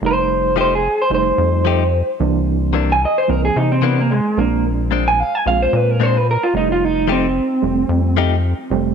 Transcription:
0.02 F1 G3 A3 D#4
0.06 C5
0.56 F3 A3 D#4 G4
0.61 C5
0.75 G#4
1.02 C5
1.10 F1 G3 A3 D#4
1.15 C5
1.38 F2
1.65 F3 A3 D#4 G4
2.20 C2 E3 A#3 D4
2.73 C3 E3 A#3 D4
2.92 G#5
3.05 D#5
3.18 C5
3.28 C2 E3 A#3 C4 A#4
3.45 G#4
3.56 C3 D#4
3.72 C4
3.82 C3 E3 A#3 B3 D4
4.01 A#3
4.11 G#3
4.37 A#1 G#3 A#3 C4 D4
4.91 A#2 G#3 C4 D4
5.08 G#5
5.20 F5
5.35 G#5
5.46 A#1 G#3 C4 F4 F5
5.62 C5
5.73 A#2 B4
5.91 A#4
6.00 A#2 G#3 C4 D4 C5
6.17 B4
6.31 A#4
6.43 F4
6.54 F1 G3 A3 D#4
6.72 F4
6.85 D#4
7.07 F3 A3 D#4 G4
7.12 C4
7.62 F1 G3 A3 C4
7.89 F2
8.17 F3 A3 D#4 G4
8.70 F1 G3 A3 C4

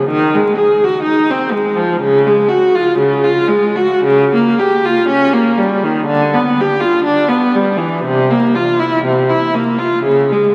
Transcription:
0.09 D#3
0.35 G#3
0.57 G#4
0.84 F#4
1.03 D#4
1.31 C4
1.52 G#3
1.76 F3
2.00 C#3
2.27 G#3
2.49 F#4
2.75 F4
2.98 C#3
3.24 F4
3.48 G#3
3.76 F#4
4.04 C#3
4.35 A#3
4.59 G4
4.85 F4
5.09 C#4
5.33 A#3
5.58 G3
5.84 D#3
6.06 D3
6.34 B3
6.61 G4
6.80 F4
7.04 D4
7.28 B3
7.55 G3
7.77 E3
8.05 C3
8.30 A#3
8.55 F4
8.80 E4
9.05 C3
9.29 E4
9.55 A#3
9.78 F4
10.04 C#3
10.32 G#3

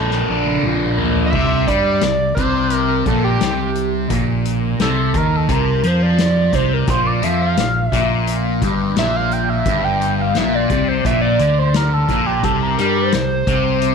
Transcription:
Already playing: A#1 A#2 A#3 D4 A4
0.10 snare
0.29 A#1 D4
0.45 high tom
0.63 A#1 F3, mid tom
0.98 A#3, floor tom
1.15 floor tom
1.26 D#5 E5
1.33 C2 C3, kick, crash
1.67 G2 G3 D5, kick, closed hi-hat
2.01 C2 C3, snare, closed hi-hat
2.35 C2 C3 C5, kick, closed hi-hat
2.70 closed hi-hat
2.88 A#4
3.06 A#1 A#2 A4, kick, closed hi-hat
3.24 G4
3.41 C2 C3, snare, closed hi-hat
3.75 closed hi-hat
4.10 A#1 A#2, kick, closed hi-hat
4.45 closed hi-hat
4.79 C2 C3 A4, snare, closed hi-hat
5.14 D#2 D#3 A#4, kick, closed hi-hat
5.36 A4
5.49 C2 C3 A#4, kick, closed hi-hat
5.83 F2 F3 C5, closed hi-hat
6.02 D5
6.18 snare, closed hi-hat
6.53 C2 C3 C5, kick, closed hi-hat
6.73 A#4
6.87 A#1 A#2 C5, kick, closed hi-hat
7.06 D5
7.23 F2 F3 E5, closed hi-hat
7.42 F5
7.57 A#1 A#2, snare, closed hi-hat
7.88 E5
7.92 A#1 A#2, kick, closed hi-hat
8.27 closed hi-hat
8.62 G1 G2, kick, closed hi-hat
8.95 A#1 A#2 E5, snare, closed hi-hat
9.16 F5
9.31 G5, closed hi-hat
9.49 E5
9.66 G1 G2, kick, closed hi-hat
9.84 G5
10.01 closed hi-hat
10.21 F5
10.35 A#1 A#2 E5, snare, closed hi-hat
10.55 D5
10.70 C2 C3, kick, closed hi-hat
10.88 C5
11.05 A#1 A#2 E5, kick, closed hi-hat
11.21 D5
11.39 D2 D3, closed hi-hat
11.59 C5
11.74 A#4, snare, closed hi-hat
11.93 A4
12.09 A#1 A#2, kick, snare, closed hi-hat
12.26 G4
12.43 C2 C3 A4, kick, closed hi-hat
12.63 A#4
12.78 G2 G3, closed hi-hat
12.97 C5
13.12 C2 C3, snare, closed hi-hat
13.47 C2 C3, kick, closed hi-hat
13.82 closed hi-hat

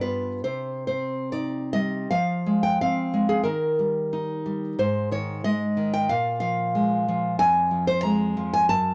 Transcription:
Already playing: G2
0.01 B3 F4 B4
0.44 C3 C5
0.87 C4 C5
1.32 D#4 D5
1.73 G3 D#5
2.11 F3 F5
2.46 G#3
2.63 G5
2.81 C4 F5
3.14 G#3
3.29 G#4
3.43 D#3 A#4
3.79 G3
4.13 D#4
4.46 G3
4.79 G#2 C5
5.12 D#3 C#5
5.44 G#3 D#5
5.77 D#3
5.94 G5
6.09 A#2 F5
6.40 F3 F5
6.75 G#3
7.08 F3
7.39 F2 G#5
7.71 F3
7.87 C5
8.03 G#3 A#5
8.37 F3
8.53 G#5
8.69 F#2 A5

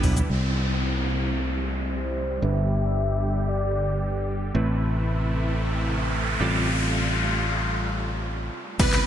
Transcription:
Already playing: D3 G3 B3 D4 E4 B4
0.03 B1, floor tom, open hi-hat, shaker
0.17 closed hi-hat, floor tom, shaker
0.30 C2 C3 G3 C4 E4 C5, downlifter
1.89 C5
2.42 G1 D3 G3 B3 D4 G4 B4 E5
3.49 D5
4.54 A1 C3 A3 C4 E4 B4, noise sweep
6.40 A1 G3 C4 F4 A4
8.79 C2 G3 B3 C4 E4 B4, kick, closed hi-hat, crash, impact, shaker
8.93 clap, closed hi-hat, shaker

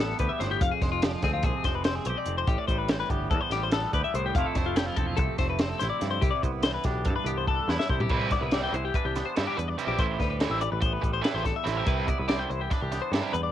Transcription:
Already playing: A1 E2 E3 G3 E4
0.00 B3 A4
0.19 D2 G4 B4, kick, closed hi-hat
0.29 E5
0.39 G1 A2 C5, snare, closed hi-hat
0.51 G4
0.61 F1 F2 F5, kick, closed hi-hat
0.72 G#4
0.82 F1 G#3 C5, kick, snare, closed hi-hat
0.92 F4
1.02 F3 G4, snare, closed hi-hat
1.13 F4
1.23 D2 C4 G#4, kick, snare, closed hi-hat
1.34 F4
1.43 C2 C3 G#4, kick, closed hi-hat
1.64 F1 G#3 C5, kick, snare, closed hi-hat
1.75 B4
1.84 C4 C5, snare, closed hi-hat
1.96 G#4
2.05 B1 C5, closed hi-hat
2.10 G4
2.18 D5
2.26 F1 F2, closed hi-hat
2.38 C5
2.48 A1 A2 G4, kick, closed hi-hat
2.58 D5
2.68 A1 G3 C5, kick, closed hi-hat
2.78 B4
2.88 E3 C5, snare, closed hi-hat
3.00 B4
3.10 G1 B3 G4, kick, closed hi-hat
3.30 E2 A4, kick, closed hi-hat
3.41 C5
3.50 A1 G3 G4, snare, closed hi-hat
3.63 C5
3.71 B3 A4, snare, closed hi-hat
3.93 D2 G4 B4, kick, closed hi-hat
4.04 E5
4.14 C2 A2 C5, closed hi-hat
4.26 G4
4.35 F1 F2 F3 A3 C4 F5, kick, closed hi-hat
4.39 E4
4.46 A4
4.55 F1 A3 C5, kick, snare, closed hi-hat
4.66 F4
4.76 F3 G4, snare, closed hi-hat
4.86 F4
4.96 E1 C4 A4, kick, closed hi-hat
5.07 F4
5.17 C2 C3 A4, kick, closed hi-hat
5.38 F1 A3 C5, kick, snare, closed hi-hat
5.50 B4
5.59 C4 C5, snare, closed hi-hat
5.70 A4
5.79 A1 E4 C5, snare, closed hi-hat
5.90 D5
6.00 F2 G2, snare, closed hi-hat
6.11 C5
6.22 C2 C3 G4, kick, closed hi-hat
6.31 D5
6.43 C2 B3 C5, kick, closed hi-hat
6.52 B4
6.63 E3 C5, snare, closed hi-hat
6.74 B4
6.84 B1 D4 G4, kick, snare, closed hi-hat
7.05 G2 A4, kick, closed hi-hat
7.16 B4
7.24 C2 B3 G4, closed hi-hat
7.38 C5
7.48 D4 A4, kick
7.68 E2 E4 B4, snare
7.79 E5, snare
7.90 C2 C3 C5, kick
8.00 G4, floor tom
8.09 C2 C3 E3 G3 C4 E4 B4, kick, crash
8.14 E4
8.31 B3 D5, muted overdriven electric guitar stroke, kick, snare, closed hi-hat
8.41 C2 B4
8.51 E3 G3 C4 E4 D5, snare, closed hi-hat
8.63 G5
8.72 C2 E3 C5, muted overdriven electric guitar stroke, closed hi-hat
8.85 G4
8.94 D4 B4, muted overdriven electric guitar stroke, kick, closed hi-hat
9.05 C2 G4
9.15 B3, muted overdriven electric guitar stroke, snare, closed hi-hat
9.25 C5
9.36 G2 E3 G3 C4 E4 A4, snare, closed hi-hat
9.47 G4
9.57 E2 B4, muted overdriven electric guitar stroke, closed hi-hat
9.68 D5
9.77 C3 E3 G3 C4 E4 C5, closed hi-hat
9.87 A#1 G4
9.98 A1 A2 E3 A3 C4 E4 C5, kick, closed hi-hat
10.11 G4
10.19 D2 G3 B4, muted overdriven electric guitar stroke, kick, snare, closed hi-hat
10.30 B4
10.40 E3 A3 C4 E4 A4, snare, closed hi-hat
10.50 A1 E5
10.61 E3 D5, muted overdriven electric guitar stroke, closed hi-hat
10.72 A1 B4
10.81 C5, muted overdriven electric guitar stroke, kick, closed hi-hat
10.85 B3
10.93 B4
11.02 A1 G3, muted overdriven electric guitar stroke, kick, closed hi-hat
11.13 C5
11.22 E3 A3 C4 E4 B4, snare, closed hi-hat
11.27 E2
11.34 A1 C5
11.44 A4, muted overdriven electric guitar stroke, kick, snare, closed hi-hat
11.56 E5
11.64 A1 A2 E3 A3 C4 E4 C5, snare, closed hi-hat
11.68 E4
11.77 G4 E5
11.86 C2 C3 G3 C4 E4 B4, kick, closed hi-hat
12.07 B3 D5, muted overdriven electric guitar stroke, kick, closed hi-hat
12.19 C2 B4
12.28 C3 G3 C4 E4 D5, snare, closed hi-hat
12.39 G5
12.49 C2 E3 C5, muted overdriven electric guitar stroke, closed hi-hat
12.61 G4
12.70 D4 B4, muted overdriven electric guitar stroke, kick, snare, closed hi-hat
12.82 C2 G4
12.92 B3, muted overdriven electric guitar stroke, snare, closed hi-hat
13.02 C5
13.12 G2 C3 G3 C4 E4 A4, snare, closed hi-hat
13.16 G2
13.23 G4
13.33 E2 B4, muted overdriven electric guitar stroke, closed hi-hat
13.44 D5

